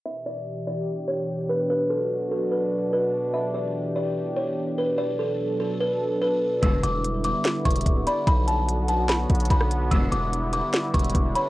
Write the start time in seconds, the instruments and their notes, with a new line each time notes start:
0.05 analog synth pad B2 E3 D4 G4, kalimba E5
0.26 kalimba D5
0.67 kalimba D5
1.08 kalimba C#5
1.49 kalimba B4
1.70 analog synth pad F#3 F#4, kalimba B4
1.90 kalimba A4
2.31 kalimba A4
2.52 kalimba B4
2.93 kalimba B4
3.34 analog synth pad E3 G4, kalimba E5
3.54 kalimba D5
3.96 kalimba D5
4.36 kalimba C#5
4.78 kalimba B4
4.98 analog synth pad F#3 A4, kalimba D5
5.19 kalimba A4
5.60 kalimba A4
5.80 kalimba B4
6.22 kalimba B4
6.63 808-style bass E1, string section G2 B2 D3, analog synth pad D3 G3 B3 E4, kalimba E6, kick, closed hi-hat
6.83 808-style bass E1, kalimba D6, closed hi-hat
7.04 closed hi-hat
7.24 kalimba D6, closed hi-hat
7.45 snare, closed hi-hat
7.65 808-style bass E1, kalimba C#6, kick, closed hi-hat
7.71 closed hi-hat
7.76 closed hi-hat
7.81 closed hi-hat
7.86 808-style bass D1, kick, closed hi-hat
8.07 soft synth lead D5, kalimba B5, closed hi-hat
8.27 808-style bass B1, analog synth pad D3 F#3 F#4, kalimba B5, kick, closed hi-hat
8.48 kalimba A5, closed hi-hat
8.69 closed hi-hat
8.88 kalimba A5, closed hi-hat
9.09 kalimba B5, snare, closed hi-hat
9.30 808-style bass B1, kick, closed hi-hat
9.35 closed hi-hat
9.40 closed hi-hat
9.45 closed hi-hat
9.50 808-style bass B1, kalimba B5, kick, closed hi-hat
9.61 cross-stick
9.71 closed hi-hat
9.91 808-style bass E1, string section G2 B2 D3, analog synth pad G3 E4, kalimba E6, kick, closed hi-hat
10.12 808-style bass E1, kalimba D6, closed hi-hat
10.33 closed hi-hat
10.53 kalimba D6, closed hi-hat
10.74 snare, closed hi-hat
10.94 808-style bass E1, kalimba C#6, kick, closed hi-hat
10.99 closed hi-hat
11.04 closed hi-hat
11.10 closed hi-hat
11.15 808-style bass E1, kick, closed hi-hat
11.35 soft synth lead C#5, kalimba B5, closed hi-hat